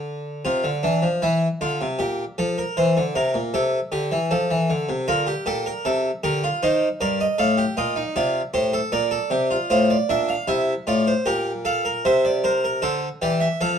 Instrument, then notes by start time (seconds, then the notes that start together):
harpsichord
Already playing: D3
0.45 C3 F4
0.64 D3
0.83 E3 D4
1.02 F3
1.22 E3 E4
1.61 D3 F4
1.81 C3
1.99 A#2 G4
2.38 F3 A4
2.58 A#4
2.77 E3 C5
2.97 D3
3.15 C3 A#4
3.34 A#2
3.54 C3 A4
3.92 D3 G4
4.11 E3
4.31 F3 A4
4.50 E3
4.70 D3
4.89 C3
5.08 D3 F4 A#4
5.27 G4
5.46 A#2 G4 A4
5.66 A#4
5.85 C3 A4
6.23 D3 G4 A#4
6.44 F4
6.63 D#3 D#4 C5
7.01 G2 A#4 D5
7.20 D#5
7.38 A2 A4 F5
7.58 G4
7.77 A#2 F4 D#5
7.96 D#4
8.16 C3 F4 D5
8.54 A2 G4 C5
8.73 A4
8.92 A#2 A#4 D5
9.11 A4
9.30 C3 G4
9.51 F4
9.70 A2 F4 C5
9.90 D5
10.09 A#2 D4 E5
10.29 F5
10.47 C3 E4 E5
10.87 A2 F4 D5
11.07 C5
11.26 A#2 G4 A#4
11.65 A4 F5
11.85 A#4
12.05 C3 C5 E5
12.25 D5
12.44 A#4 C5
12.64 A#4
12.82 D3 A4 C5
13.22 E3 G4 D5
13.40 E5
13.61 F3 A4 F5